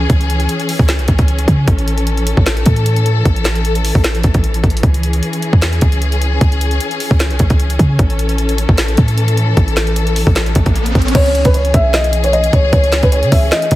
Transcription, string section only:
0, 0, Header, 1, 2, 480
1, 0, Start_track
1, 0, Key_signature, 4, "minor"
1, 0, Tempo, 394737
1, 118, Time_signature, 4, 2, 24, 8
1, 16725, End_track
2, 0, Start_track
2, 0, Title_t, "String section"
2, 0, Program_c, 0, 48
2, 0, Note_on_c, 0, 52, 86
2, 0, Note_on_c, 0, 61, 77
2, 0, Note_on_c, 0, 68, 90
2, 1990, Note_off_c, 0, 52, 0
2, 2000, Note_off_c, 0, 68, 0
2, 2036, Note_on_c, 0, 52, 84
2, 2036, Note_on_c, 0, 69, 92
2, 5830, Note_off_c, 0, 61, 0
2, 5838, Note_off_c, 0, 69, 0
2, 5877, Note_on_c, 0, 61, 75
2, 5877, Note_on_c, 0, 68, 91
2, 9668, Note_off_c, 0, 52, 0
2, 9679, Note_off_c, 0, 68, 0
2, 9718, Note_on_c, 0, 52, 85
2, 9718, Note_on_c, 0, 69, 90
2, 13509, Note_off_c, 0, 61, 0
2, 13519, Note_off_c, 0, 52, 0
2, 13519, Note_off_c, 0, 69, 0
2, 13557, Note_on_c, 0, 52, 84
2, 13557, Note_on_c, 0, 61, 78
2, 13557, Note_on_c, 0, 68, 93
2, 16725, Note_off_c, 0, 52, 0
2, 16725, Note_off_c, 0, 61, 0
2, 16725, Note_off_c, 0, 68, 0
2, 16725, End_track
0, 0, End_of_file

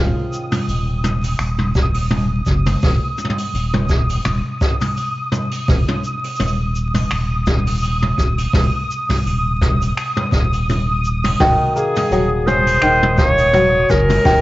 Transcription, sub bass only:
0, 0, Header, 1, 2, 480
1, 0, Start_track
1, 0, Tempo, 714286
1, 1898, Time_signature, 4, 2, 24, 8
1, 9686, End_track
2, 0, Start_track
2, 0, Title_t, "Sub bass"
2, 0, Program_c, 0, 38
2, 0, Note_on_c, 0, 27, 103
2, 83, Note_off_c, 0, 27, 0
2, 455, Note_on_c, 0, 27, 73
2, 899, Note_off_c, 0, 27, 0
2, 932, Note_on_c, 0, 27, 91
2, 1617, Note_off_c, 0, 27, 0
2, 1654, Note_on_c, 0, 30, 91
2, 1849, Note_off_c, 0, 30, 0
2, 1900, Note_on_c, 0, 27, 97
2, 2004, Note_off_c, 0, 27, 0
2, 2377, Note_on_c, 0, 27, 78
2, 2820, Note_off_c, 0, 27, 0
2, 2862, Note_on_c, 0, 27, 90
2, 2964, Note_off_c, 0, 27, 0
2, 3819, Note_on_c, 0, 27, 100
2, 3923, Note_off_c, 0, 27, 0
2, 4301, Note_on_c, 0, 27, 79
2, 4742, Note_off_c, 0, 27, 0
2, 4777, Note_on_c, 0, 27, 89
2, 5460, Note_off_c, 0, 27, 0
2, 5498, Note_on_c, 0, 27, 84
2, 5691, Note_off_c, 0, 27, 0
2, 5735, Note_on_c, 0, 27, 95
2, 5841, Note_off_c, 0, 27, 0
2, 6219, Note_on_c, 0, 27, 78
2, 6661, Note_off_c, 0, 27, 0
2, 6937, Note_on_c, 0, 27, 96
2, 7620, Note_off_c, 0, 27, 0
2, 7660, Note_on_c, 0, 27, 102
2, 7763, Note_off_c, 0, 27, 0
2, 8134, Note_on_c, 0, 27, 81
2, 8578, Note_off_c, 0, 27, 0
2, 8616, Note_on_c, 0, 27, 98
2, 9299, Note_off_c, 0, 27, 0
2, 9338, Note_on_c, 0, 30, 89
2, 9531, Note_off_c, 0, 30, 0
2, 9578, Note_on_c, 0, 27, 96
2, 9682, Note_off_c, 0, 27, 0
2, 9686, End_track
0, 0, End_of_file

